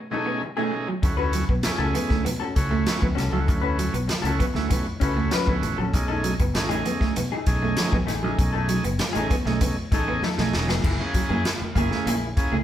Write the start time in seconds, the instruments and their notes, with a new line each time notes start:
0.11 tonewheel organ B2 A3 C#4 D#4 G#4, hollow-body jazz guitar A3 D#4 A4, muted clean electric guitar stroke
0.26 clean electric guitar B3, muted hollow-body jazz guitar stroke
0.42 muted hollow-body jazz guitar stroke
0.57 tonewheel organ B2 A3 C#4 D#4 G#4, clean electric guitar A3, hollow-body jazz guitar A3 D#4 G#4
0.72 muted clean electric guitar stroke, muted hollow-body jazz guitar stroke
0.88 clean electric guitar F#3, muted hollow-body jazz guitar stroke
1.02 fingered electric bass D2, tonewheel organ A3 C#4 E4 F#4, muted hollow-body jazz guitar stroke, kick, closed hi-hat, muted conga
1.17 hollow-body jazz guitar C#4 F#4 B4, muted clean electric guitar stroke
1.33 clean electric guitar F#3, muted hollow-body jazz guitar stroke, closed hi-hat
1.48 fingered electric bass B1, clean electric guitar B3, muted hollow-body jazz guitar stroke, kick
1.63 tonewheel organ A3 C#4 E4 G#4, muted hollow-body jazz guitar stroke, muted clean electric guitar stroke, snare, closed hi-hat, high conga
1.78 fingered electric bass C#2, hollow-body jazz guitar C#4 F#4 A4
1.94 clean electric guitar B3, muted hollow-body jazz guitar stroke, closed hi-hat, muted conga
2.09 fingered electric bass D2, clean electric guitar A3, muted hollow-body jazz guitar stroke, kick, snare
2.25 clean electric guitar B3, muted hollow-body jazz guitar stroke, closed hi-hat, muted conga, low conga
2.40 hollow-body jazz guitar C#4 F#4 A4
2.55 fingered electric bass C#2, tonewheel organ A3 C#4 E4 F#4, muted hollow-body jazz guitar stroke, muted clean electric guitar stroke, kick, closed hi-hat
2.71 clean electric guitar A3, muted hollow-body jazz guitar stroke
2.86 muted hollow-body jazz guitar stroke, snare, closed hi-hat, high conga
3.01 fingered electric bass D2, clean electric guitar B3, muted hollow-body jazz guitar stroke, kick, high conga
3.15 fingered electric bass C2, hollow-body jazz guitar C#4 F#4 A4, muted clean electric guitar stroke, snare, closed hi-hat
3.30 fingered electric bass C#2, clean electric guitar F#3, tonewheel organ A3 C#4 E4 F4, hollow-body jazz guitar C#4 F#4 A4, high conga
3.40 tonewheel organ F#4
3.45 fingered electric bass D2, muted hollow-body jazz guitar stroke, kick, closed hi-hat
3.50 muted conga
3.61 hollow-body jazz guitar C#4 F#4 B4, muted clean electric guitar stroke
3.78 clean electric guitar F#3, muted hollow-body jazz guitar stroke, closed hi-hat
3.93 fingered electric bass B1, clean electric guitar B3, muted hollow-body jazz guitar stroke, closed hi-hat
4.08 muted hollow-body jazz guitar stroke, muted clean electric guitar stroke, snare, closed hi-hat, high conga
4.22 fingered electric bass C#2, tonewheel organ A3 C#4 E4, hollow-body jazz guitar C#4 F#4 A4, closed hi-hat
4.26 tonewheel organ F#4
4.39 clean electric guitar B3, muted hollow-body jazz guitar stroke, kick, closed hi-hat, muted conga
4.54 fingered electric bass D2, clean electric guitar A3, tonewheel organ A3 C#4 E4 F#4, muted hollow-body jazz guitar stroke, snare
4.69 clean electric guitar B3, muted hollow-body jazz guitar stroke, kick, closed hi-hat, muted conga, low conga
5.00 fingered electric bass C#2, tonewheel organ A3 C#4 E4 F#4, hollow-body jazz guitar C#4 F#4 B4, muted clean electric guitar stroke, kick, closed hi-hat
5.16 clean electric guitar A3, muted hollow-body jazz guitar stroke
5.31 hollow-body jazz guitar C#4 F#4 B4, snare, closed hi-hat, high conga
5.47 fingered electric bass D2, tonewheel organ A3 C#4 E4 F#4, clean electric guitar B3, kick, high conga
5.62 fingered electric bass A1, muted hollow-body jazz guitar stroke, muted clean electric guitar stroke, closed hi-hat
5.78 fingered electric bass A#1, clean electric guitar F#3, hollow-body jazz guitar C#4 F#4 A4, high conga
5.93 fingered electric bass B1, tonewheel organ A3 C#4 D#4 G#4, muted hollow-body jazz guitar stroke, kick, closed hi-hat, muted conga
6.08 hollow-body jazz guitar A3 D#4 A4, muted clean electric guitar stroke
6.23 clean electric guitar F#3, muted hollow-body jazz guitar stroke, closed hi-hat
6.40 fingered electric bass F#1, clean electric guitar B3, muted hollow-body jazz guitar stroke, kick, closed hi-hat
6.54 fingered electric bass A1, tonewheel organ A3 C#4 D#4 G#4, muted hollow-body jazz guitar stroke, muted clean electric guitar stroke, snare, closed hi-hat, high conga
6.69 hollow-body jazz guitar A3 D#4 G#4, closed hi-hat
6.85 clean electric guitar B3, muted hollow-body jazz guitar stroke, closed hi-hat, muted conga
7.01 clean electric guitar A3, muted hollow-body jazz guitar stroke, kick, snare
7.16 clean electric guitar B3, muted hollow-body jazz guitar stroke, closed hi-hat, muted conga, low conga
7.32 hollow-body jazz guitar A3 D#4 G#4
7.47 fingered electric bass B1, tonewheel organ A3 C#4 D#4 G#4, muted clean electric guitar stroke, muted hollow-body jazz guitar stroke, kick, closed hi-hat
7.62 clean electric guitar A3, muted hollow-body jazz guitar stroke
7.77 muted hollow-body jazz guitar stroke, snare, closed hi-hat, high conga
7.92 fingered electric bass A1, clean electric guitar B3, muted hollow-body jazz guitar stroke, kick, high conga
8.07 fingered electric bass A1, hollow-body jazz guitar A3 D#4 G#4, muted clean electric guitar stroke, snare, closed hi-hat
8.23 fingered electric bass A#1, clean electric guitar F#3, tonewheel organ A3 C#4 D#4 G#4, hollow-body jazz guitar A3 D#4 G#4, high conga
8.38 fingered electric bass B1, muted hollow-body jazz guitar stroke, kick, closed hi-hat, muted conga
8.53 hollow-body jazz guitar A3 D#4 A4, muted clean electric guitar stroke
8.69 clean electric guitar F#3, muted hollow-body jazz guitar stroke, closed hi-hat
8.84 fingered electric bass F#1, clean electric guitar B3, muted hollow-body jazz guitar stroke, closed hi-hat
8.99 muted hollow-body jazz guitar stroke, muted clean electric guitar stroke, snare, closed hi-hat, high conga
9.13 fingered electric bass A1, hollow-body jazz guitar A3 D#4 G#4, tonewheel organ A3 C#4 D#4, closed hi-hat
9.17 tonewheel organ G#4
9.29 clean electric guitar B3, muted hollow-body jazz guitar stroke, kick, closed hi-hat, muted conga
9.45 fingered electric bass B1, clean electric guitar A3, tonewheel organ A3 C#4 D#4 G#4, muted hollow-body jazz guitar stroke, snare
9.61 clean electric guitar B3, muted hollow-body jazz guitar stroke, kick, closed hi-hat, muted conga, low conga
9.92 fingered electric bass A1, hollow-body jazz guitar A3 D#4 A4, tonewheel organ A3 C#4 D#4 G#4, muted clean electric guitar stroke, kick, closed hi-hat
10.08 clean electric guitar B3, muted hollow-body jazz guitar stroke
10.22 hollow-body jazz guitar A3 D#4 A4, snare, high conga
10.38 fingered electric bass B1, clean electric guitar A3, tonewheel organ A3 C#4 D#4 G#4, snare, high conga
10.53 fingered electric bass E1, muted clean electric guitar stroke, muted hollow-body jazz guitar stroke, snare
10.68 fingered electric bass F1, hollow-body jazz guitar A3 D#4 G#4, clean electric guitar B3, snare, high conga
10.84 fingered electric bass F#1, hollow-body jazz guitar A#3 E4 G#4, kick, crash, muted conga
10.99 tonewheel organ A#3 C#4 E4 G#4, muted hollow-body jazz guitar stroke, muted clean electric guitar stroke
11.14 clean electric guitar F#3, muted fingered electric bass stroke, muted hollow-body jazz guitar stroke, kick, closed hi-hat, muted conga
11.29 fingered electric bass F#2, clean electric guitar A#3, hollow-body jazz guitar A#3 E4 G#4
11.45 muted clean electric guitar stroke, snare, closed hi-hat, high conga
11.60 muted hollow-body jazz guitar stroke, muted fingered electric bass stroke
11.75 fingered electric bass F#1, tonewheel organ A#3 C#4 E4 G#4, clean electric guitar A#3, hollow-body jazz guitar A#3 E4 G#4, kick, closed hi-hat, muted conga
11.91 clean electric guitar A3, muted hollow-body jazz guitar stroke, snare
12.06 fingered electric bass A#1, clean electric guitar A#3, hollow-body jazz guitar A#3 E4 G#4, closed hi-hat, muted conga
12.37 tonewheel organ A#3 C#4 E4 G#4, muted clean electric guitar stroke, muted hollow-body jazz guitar stroke, kick, closed hi-hat
12.52 fingered electric bass C#2, clean electric guitar A3, hollow-body jazz guitar A#3 E4 G#4